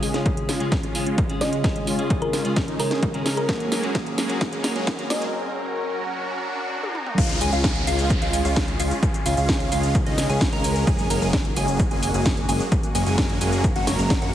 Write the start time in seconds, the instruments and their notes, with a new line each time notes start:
Already playing: clean electric guitar C#3 G#3 C#4 F4 G#4, analog synth pad C#3 C#4 F4 G#4, riser
0.03 supersaw synth G#3 C#4 G#4, open hi-hat
0.13 clean electric guitar C#3 G#3 C#4 F4 G#4, supersaw synth G#3 C#4 F4, snare, closed hi-hat
0.26 kick, closed hi-hat
0.37 closed hi-hat
0.49 supersaw synth G#3 C#4 F4, snare, open hi-hat
0.59 clean electric guitar C#3 G#3 C#4 F4 G#4, closed hi-hat
0.72 kick, snare, closed hi-hat
0.83 supersaw synth G#3 C#4 F4, closed hi-hat
0.94 clean electric guitar C#3 G#3 C#4 F4 G#4, open hi-hat
1.06 supersaw synth G#3 C#4 F4, closed hi-hat
1.18 kick, closed hi-hat
1.29 clean electric guitar C#3 G#3 C#4 F4 G#4, closed hi-hat
1.41 supersaw synth G#3 C#4 F4, synth pluck D#5, snare, open hi-hat
1.53 closed hi-hat
1.63 clean electric guitar C#3 G#3 C#4 F4 G#4, kick, snare, closed hi-hat
1.76 closed hi-hat
1.87 supersaw synth G#3 C#4 F4, open hi-hat
1.98 clean electric guitar C#3 G#3 C#4 F4 G#4, supersaw synth G#3 C#4 F4, closed hi-hat
2.10 kick, closed hi-hat
2.22 synth pluck A#4, closed hi-hat
2.33 supersaw synth G#3 C#4 F4, snare, open hi-hat
2.44 clean electric guitar C#3 G#3 C#4 F4 G#4, closed hi-hat
2.56 kick, snare, closed hi-hat
2.68 supersaw synth G#3 C#4 D#4, closed hi-hat
2.79 clean electric guitar C#3 G#3 C#4 F4 G#4, synth pluck A#4, open hi-hat
2.91 supersaw synth G#3 C#4 G#4, snare, closed hi-hat
3.03 kick, closed hi-hat
3.13 clean electric guitar C#3 G#3 C#4 F4 G#4, supersaw synth G#3 C#4 A#4, closed hi-hat
3.26 snare, open hi-hat
3.37 synth pluck A#4, closed hi-hat
3.48 supersaw synth F#3 G#3 A#3 C#4 G#4, analog synth pad F#3 A#4, clean electric guitar A#3 C#4 F#4 G#4, kick, snare, closed hi-hat
3.60 closed hi-hat
3.72 supersaw synth F#3 G#3 A#3 C#4 A#4, snare, open hi-hat
3.83 supersaw synth F#3 G#3 A#3 C#4 G#4, clean electric guitar A#3 C#4 F#4 G#4, closed hi-hat
3.95 kick, snare, closed hi-hat
4.06 closed hi-hat
4.18 supersaw synth F#3 G#3 A#3 C#4 G#4, snare, open hi-hat
4.29 clean electric guitar A#3 C#4 F#4 G#4, closed hi-hat
4.41 kick, snare, closed hi-hat
4.53 supersaw synth F#3 G#3 A#3 C#4 G#4, closed hi-hat
4.63 clean electric guitar A#3 C#4 F#4 G#4, snare, open hi-hat
4.76 supersaw synth F#3 G#3 A#3 C#4 G#4, closed hi-hat
4.87 kick, snare, closed hi-hat
4.98 clean electric guitar A#3 C#4 F#4 G#4, closed hi-hat
5.10 supersaw synth F#3 G#3 A#3 C#4 G#4, synth pluck D#5, snare, open hi-hat
5.22 closed hi-hat
5.33 analog synth pad F#4
6.83 high tom
6.95 mid tom
7.06 mid tom
7.18 analog synth bass C#2, supersaw synth G#3 C#4 F4, analog synth pad C#4 F4 G#4, digital synth lead F5, kick, closed hi-hat, crash, downlifter, shaker
7.29 closed hi-hat, shaker
7.41 analog synth bass C#2, supersaw synth G#3 C#4 G#4, digital synth lead G#5, open hi-hat, shaker
7.53 analog synth bass C#2, supersaw synth G#3 C#4 F4, digital synth lead F5, closed hi-hat, shaker
7.64 kick, snare, closed hi-hat, shaker
7.76 closed hi-hat
7.87 analog synth bass C#2, supersaw synth G#3 C#4 F4, digital synth lead F5, open hi-hat, shaker
7.99 closed hi-hat, shaker
8.10 kick, closed hi-hat, shaker
8.22 analog synth bass C#2, supersaw synth G#3 C#4 F4, digital synth lead F5, closed hi-hat
8.33 open hi-hat, shaker
8.45 analog synth bass C#2, supersaw synth G#3 C#4 F4, digital synth lead F5, closed hi-hat, shaker
8.56 kick, snare, closed hi-hat, shaker
8.68 closed hi-hat
8.79 analog synth bass C#2, supersaw synth G#3 C#4 F4, digital synth lead F5, open hi-hat, shaker
8.91 closed hi-hat, shaker
9.03 kick, closed hi-hat, shaker
9.14 closed hi-hat, shaker
9.26 analog synth bass C#2, supersaw synth G#3 C#4 F4, digital synth lead F5, open hi-hat, shaker
9.37 analog synth bass C#2, supersaw synth G#3 C#4 F4, digital synth lead F5, closed hi-hat, shaker
9.49 kick, snare, closed hi-hat, shaker
9.60 closed hi-hat
9.72 analog synth bass C#2, supersaw synth G#3 C#4 F4, digital synth lead F5, open hi-hat, shaker
9.83 closed hi-hat, shaker
9.95 kick, closed hi-hat, shaker
10.06 analog synth bass C#2, supersaw synth G#3 C#4 D#4, digital synth lead D#5, closed hi-hat
10.18 snare, open hi-hat, shaker
10.29 analog synth bass C#2, supersaw synth G#3 C#4 G#4, digital synth lead G#5, closed hi-hat, shaker
10.41 kick, snare, closed hi-hat, shaker
10.53 analog synth bass C#2, supersaw synth G#3 C#4 A#4, digital synth lead A#5, closed hi-hat
10.64 open hi-hat, shaker
10.76 closed hi-hat, shaker
10.87 analog synth bass F#1, supersaw synth F#3 G#3 A#3 C#4 G#4, analog synth pad A#3 F#4, digital synth lead G#5, kick, closed hi-hat, shaker
10.99 closed hi-hat, shaker
11.10 analog synth bass F#1, supersaw synth F#3 G#3 A#3 C#4 A#4, digital synth lead A#5, open hi-hat, shaker
11.22 analog synth bass F#1, supersaw synth F#3 G#3 A#3 C#4 G#4, digital synth lead G#5, closed hi-hat, shaker
11.33 kick, snare, closed hi-hat, shaker
11.45 closed hi-hat
11.56 analog synth bass F#1, supersaw synth F#3 G#3 A#3 C#4 G#4, digital synth lead G#5, open hi-hat, shaker
11.68 closed hi-hat, shaker
11.79 kick, closed hi-hat, shaker
11.91 analog synth bass F#1, supersaw synth F#3 G#3 A#3 C#4 G#4, digital synth lead G#5, closed hi-hat
12.03 open hi-hat, shaker
12.14 analog synth bass F#1, supersaw synth F#3 G#3 A#3 C#4 G#4, digital synth lead G#5, closed hi-hat, shaker
12.26 kick, snare, closed hi-hat, shaker
12.37 closed hi-hat
12.49 analog synth bass F#1, supersaw synth F#3 G#3 A#3 C#4 G#4, digital synth lead G#5, open hi-hat, shaker
12.60 closed hi-hat, shaker
12.72 analog synth pad A#4, kick, closed hi-hat, shaker
12.83 closed hi-hat, shaker
12.95 analog synth bass F#1, supersaw synth F#3 G#3 A#3 C#4 G#4, digital synth lead G#5, open hi-hat, shaker
13.06 analog synth bass F#1, supersaw synth F#3 G#3 A#3 C#4 G#4, digital synth lead G#5, closed hi-hat, shaker
13.18 kick, snare, closed hi-hat, shaker
13.30 closed hi-hat
13.41 analog synth bass F#1, supersaw synth F#3 G#3 A#3 C#4 G#4, digital synth lead G#5, open hi-hat, shaker
13.53 closed hi-hat, shaker
13.64 kick, closed hi-hat, shaker
13.76 analog synth bass F#1, supersaw synth F#3 G#3 A#3 C#4 F#4, digital synth lead F#5, closed hi-hat
13.87 analog synth bass F#1, supersaw synth F#3 G#3 A#3 C#4 C#5, digital synth lead C#6, snare, open hi-hat, shaker
13.99 analog synth bass F#1, supersaw synth F#3 G#3 A#3 C#4 A#4, digital synth lead A#5, closed hi-hat, shaker
14.10 kick, snare, closed hi-hat, shaker
14.22 analog synth bass F#2, supersaw synth F#3 G#3 A#3 C#4 F#4, digital synth lead F#5, closed hi-hat